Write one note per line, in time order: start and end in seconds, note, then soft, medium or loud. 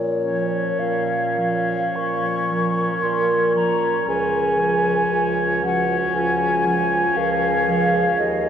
0.00 0.66 A#2 soft
0.00 0.81 C#5 soft
0.24 1.36 F3 soft
0.24 1.36 C#4 soft
0.79 1.84 A#2 soft
0.79 1.97 F5 soft
1.39 2.49 F3 soft
1.39 2.49 C#4 soft
1.96 2.91 A#2 soft
1.96 4.04 A#4 soft
1.96 3.04 C#6 medium
2.51 3.53 F3 soft
2.51 3.54 C#4 soft
3.02 3.95 A#2 soft
3.02 3.55 C6 medium
3.55 4.06 F3 soft
3.55 4.06 C#4 soft
3.55 4.06 A#5 soft
4.07 4.99 C#2 soft
4.07 4.58 F3 soft
4.07 4.59 C#4 soft
4.07 5.14 G#4 soft
4.07 5.35 G#5 medium
4.59 5.61 F3 soft
4.59 5.62 C#4 soft
5.11 6.03 C#2 soft
5.11 5.66 F4 soft
5.64 6.64 F3 soft
5.64 6.64 C#4 soft
5.64 6.17 F#4 soft
5.64 5.97 F#5 medium
6.14 7.04 C#2 soft
6.14 7.19 F4 soft
6.14 7.18 G#5 medium
6.66 7.66 F3 soft
6.66 7.67 C#4 soft
7.17 8.08 C#2 medium
7.17 7.70 A#4 medium
7.17 8.18 F5 medium
7.68 8.19 F3 soft
7.68 8.19 C#4 soft
7.68 8.49 G#4 soft
8.19 8.49 D#2 medium
8.19 8.49 D#5 medium